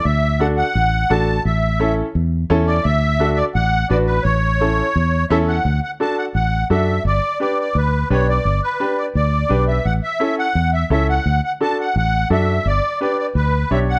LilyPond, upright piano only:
\new Staff \with { instrumentName = "Upright piano" } { \time 4/4 \key d \major \tempo 4 = 171 r4 <d' fis' a'>8 r4. <d' fis' a'>8 r8 | r4 <cis' e' a'>8 r4. <cis' e' a'>8 r8 | r4 <d' fis' a'>8 r4. <d' fis' b'>8 r8 | r4 <cis' e' a'>8 r4. <cis' e' a'>8 r8 |
r4 <d' fis' a'>8 r4. <d' fis' a'>8 r8 | r4 <d' g' b'>8 r4. <d' g' b'>8 r8 | r4 <d' g' b'>8 r4. <d' g' b'>8 r8 | r4 <cis' e' a'>8 r4. <cis' e' a'>8 r8 |
r4 <d' fis' a'>8 r4. <d' fis' a'>8 r8 | r4 <d' g' b'>8 r4. <d' g' cis''>8 r8 | }